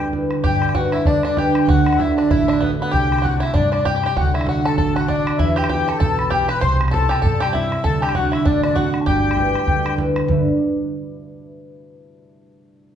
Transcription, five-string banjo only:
0.44 G4
0.75 F#4
0.93 E4
1.07 D4
1.25 D4
1.38 G4
1.69 F#4
2.00 E4
2.18 D4
2.31 E4
2.48 D4
2.61 B3
2.82 B3
2.91 G4
3.22 F#4
3.40 E4
3.54 D4
3.72 D4
3.85 G4
3.96 G4
4.06 G4
4.17 F#4
4.34 E4
4.49 F#4
4.65 A4
4.78 A4
4.96 F#4
5.08 D4
5.39 E4
5.56 G4
5.70 G4
5.88 A4
6.00 A4
6.30 G4
6.49 B4
6.61 C5
6.91 A4
7.09 G4
7.22 A4
7.40 G4
7.53 E4
7.84 A4
8.02 G4
8.15 F#4
8.32 E4
8.45 D4
8.64 D4
8.75 F#4
9.06 G4

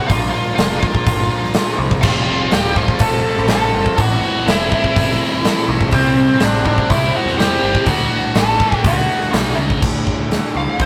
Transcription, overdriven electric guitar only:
2.03 F2 C3 F3 A3 C4 F4
2.28 F3 A3 C4 F4
2.51 F2 C3 F3 A3 C4 F4
2.76 F3 A3 C4 F4
3.50 F3 A3 C4 F4
3.74 F3 A3 C4 F4
3.99 A2 E3 A3 C4 E4 A4
4.22 A3 C4 E4 A4
4.47 A2 E3 A3 C4 E4 A4
4.71 A3 C4 E4 A4
5.44 A3 C4 E4 A4
5.68 A3 C4 E4 A4
5.92 C3 G3 C4 E4 G4 C5
6.15 C4 E4 G4 C5
6.40 C3 G3 C4 E4 G4 C5
6.64 C4 E4 G4 C5
7.38 C4 E4 G4 C5
7.63 C4 E4 G4 C5
7.86 D2 A2 D3 A3 F#4
8.11 D3 A3 F#4
8.35 D2 A2 D3 A3 F#4
8.59 D3 A3 F#4
9.34 A2 D3 A3 F#4
9.58 D3 A3 F#4

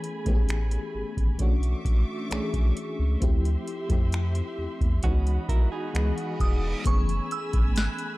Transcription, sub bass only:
0.26 A1
0.95 G#1
1.17 G#1
1.40 B1
1.85 A1
2.31 B1
2.54 B1
2.99 C#2
3.22 D2
3.90 F2
4.58 E2
4.81 E2
5.04 C#2
5.49 B1
5.95 C#2
6.40 E1
6.86 F#1
7.54 G#1

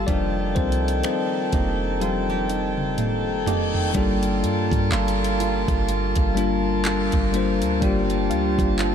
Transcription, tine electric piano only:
Already playing: G3 G5
0.07 G3 A#3 D4 D#4 D5
0.55 C4 C5
1.04 C4 C5
2.00 G3 G4
3.93 G3 A#3 D4 F4
3.97 A4
6.35 G3 A#3 D4 F4
6.39 A#4
7.32 G3 A#3 D4 F4
7.36 C5
7.80 G3 A#3 D4 F4
7.85 G4

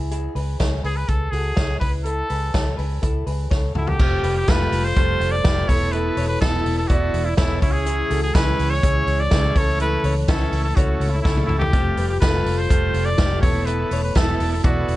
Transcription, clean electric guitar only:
Already playing: E4 G#4
0.11 E4 G#4
0.36 G#4 B4
0.60 G#4 C#5
0.84 G#4 B4
1.32 F#4 A4
1.56 G#4 C#5
1.80 E4 B4
2.05 E4 A4
2.30 G#4 B4
2.54 A4 C#5
2.77 G#4 B4
3.02 E4 A4
3.26 G#4 B4
3.51 A4 C#5
3.75 F#4 A4
3.99 C4 G4
4.24 G4 B4
4.48 F4 A4
4.97 A4 C5
5.46 G4 B4
5.70 E4 A4
5.94 E4 A4
6.17 A4 C#5
6.42 E4 B4
6.90 B4 D5
7.38 G#4 C#5
7.87 E4 G#4
8.10 F#4 A4
8.35 E4 G#4
8.83 G#4 C#5
9.32 G#4 B4
9.56 E4 A4
9.81 E4 A4
10.05 A4 C#5
10.29 E4 B4
10.77 A4 C#5
11.25 E4 A4
11.73 C4 G4
11.97 G4 B4
12.22 F4 A4
12.69 A4 C5
13.18 G4 B4
13.43 E4 A4
13.67 E4 A4
13.93 A4 C#5
14.16 E4 B4
14.65 B4 D5

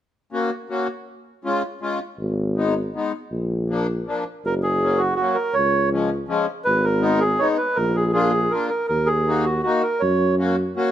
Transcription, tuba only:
2.19 G#1
3.32 A#1
4.45 F#1
5.56 C#2
6.66 G#1
7.77 A#1
8.90 D#2
10.02 F#2

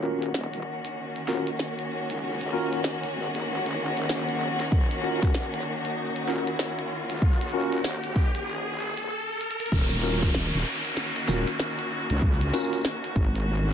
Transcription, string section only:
Already playing: D#3 A#3 C#4 F#4
9.72 D#3 A#3 C#4 F#4

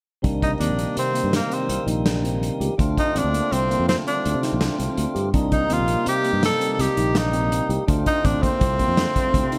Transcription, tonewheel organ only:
0.22 C3 D#3 G3 A#3
2.77 D3 A3 C4 F4
5.32 C3 G3 A#3 D#4
7.87 D3 A3 C4 F4

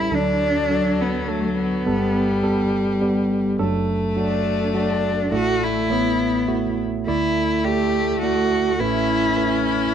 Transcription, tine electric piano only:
Already playing: A1 A2 G3 C#4 A4 B4
0.11 D2 D3 F#3 D4 A4
0.70 F#3 D4 A4
1.28 F#3 D4 A4
1.86 G1 G2 G3 B3 A4
2.43 G3 B3 A4
3.01 G3 B3 G4
3.59 F#1 F#2 F#3 D4 A4
4.16 F#3 D4 F#4
4.74 F#3 D4 F#4
5.32 A1 A2 A3 E4 D5
5.89 A1 A2 A3 E4 C#5
6.48 A3 E4 F#4
7.07 D2 D3 A3 E4 D5
7.65 A3 E4 D5
8.23 A3 E4 D5
8.80 A1 A2 A3 E4 B4
9.37 A3 E4 B4

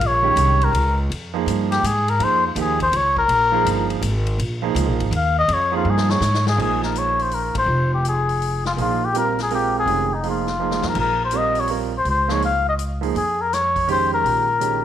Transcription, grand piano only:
0.22 D#3 G#3 C#4 G4
1.34 F3 A#3 D#4 G#4
2.19 F3 A#3 D#4 G#4
2.56 F3 A#3 D#4 G4
3.52 F3 A#3 D#4 G#4
4.62 F3 A#3 D#4 G#4
5.72 F3 A#3 D#4 G#4
6.56 F3 A#3 D#4 G#4
8.77 F3 A#3 D#4 G#4
9.14 G3 C4 F4 A#4
9.50 G#3 C4 F4 A#4
9.86 D#3 G#3 C#4 G4
10.23 F3 A#3 D#4 G#4
10.59 F3 A#3 D#4 G#4
11.32 G3 C4 F4 A#4
11.69 G3 C4 F4 A#4
12.28 F3 A#3 D#4 G#4
13.01 F3 A#3 D#4 G#4
13.87 D#3 G#3 C#4 G4
14.59 D#3 G#3 C#4 G4

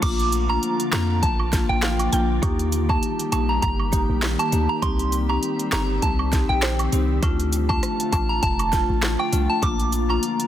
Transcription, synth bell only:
0.03 D6
0.49 A#5
0.92 A#5
1.22 A5
1.69 G5
2.89 A5
3.32 A5
3.49 A#5
3.62 A#5
4.39 A5
4.69 A#5
4.82 C6
5.29 A#5
5.73 A#5
6.02 A5
6.49 G5
7.69 A5
8.12 A5
8.29 A#5
8.43 A5
9.19 G5
9.50 A5
9.63 D6
10.10 A#5

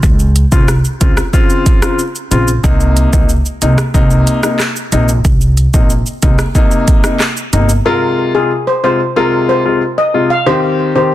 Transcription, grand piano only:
0.52 C#3 C4 F4
1.00 C#3 C4 F4
1.33 C#3 C4 F4
1.82 C#3 C4 F4
2.31 C#3 C4 F4
2.63 C3 A#3 D#4
3.12 C3 A#3 D#4
3.62 C3 A#3 D#4
3.94 C3 A#3 D#4
4.43 C3 A#3 D#4
4.92 C3 A#3 D#4
5.74 C3 A#3 D#4
6.22 C3 A#3 D#4
6.55 C3 A#3 D#4
7.04 C3 A#3 D#4
7.53 C3 A#3 D#4
7.85 C3 G#3 F4
8.34 C3 G#3 F4
8.83 C3 G#3 F4
9.16 C3 G#3 F4
9.65 C3 G#3 F4
10.14 C3 G#3 F4
10.46 D#3 C4 G4
10.95 D#3 C4 G4

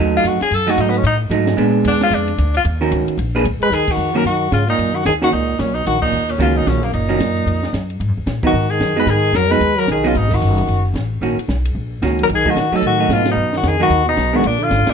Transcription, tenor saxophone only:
0.17 F4
0.27 F#4
0.42 G#4
0.54 A4
0.70 F#4
0.81 D#4
0.89 B3
0.97 C#4
1.07 D#4
1.87 D4
2.03 F4
2.14 D4
2.57 F4
3.63 B4
3.74 G#4
3.91 F#4
4.17 A#4
4.26 F#4
4.53 F4
4.69 D#4
4.95 F#4
5.06 G#4
5.24 F#4
5.33 D#4
5.59 C#4
5.74 D#4
5.87 F#4
6.02 D#4
6.30 C#4
6.42 F4
6.57 D#4
6.68 C#4
6.84 A#3
6.94 D#4
8.46 F#4
8.70 G#4
8.99 B4
9.10 G#4
9.36 A#4
9.52 B4
9.79 A#4
9.91 G#4
10.07 F4
10.17 D#4
10.34 F#4
12.23 A#4
12.35 G#4
12.50 F#4
12.76 A4
12.87 F#4
13.12 F4
13.31 D#4
13.57 F#4
13.68 G#4
13.83 F#4
14.09 D#4
14.36 F#4
14.47 D4
14.63 F4
14.90 D4

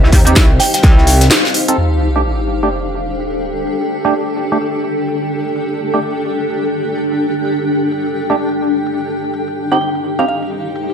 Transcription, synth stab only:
0.27 C4 D#4 G4
1.68 C4 D#4 A4
2.16 A3 D4 G4
2.63 A3 D4 G4
4.05 A3 D4 G4
4.52 A3 D4 G4
5.94 A3 D4 G4
8.30 A3 D4 G4
9.72 C4 D#4 G4
10.19 C4 D#4 G4

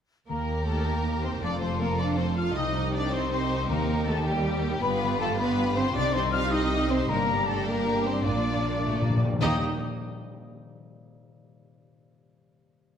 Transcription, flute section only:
0.28 A#5
0.67 A5
0.86 A#5
1.24 C6
1.45 D6
1.62 C6
1.82 A#5
2.01 D6
2.19 C6
2.38 F6
2.57 D#6
2.94 D6
3.13 C6
3.33 C6
3.69 A#5
4.09 A5
4.27 G5
4.82 B5
5.21 A5
5.38 B5
5.76 C6
5.94 D6
6.14 C6
6.32 F6
6.51 D#6
6.90 C6
7.09 A#5
7.47 A5
7.66 A#5
8.06 C6
8.24 D6
9.42 D#6

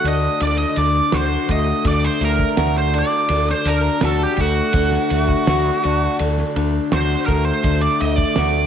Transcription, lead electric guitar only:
0.08 D#5
0.42 D5
0.58 D#5
0.78 D5
1.14 C5
1.51 D#5
1.87 D5
2.04 C5
2.25 A#4
2.78 C5
2.99 D5
3.51 C5
3.67 A#4
4.05 A4
4.23 G4
4.41 F#4
6.93 C5
7.26 A#4
7.45 C5
7.81 D5
8.01 D#5
8.16 D5

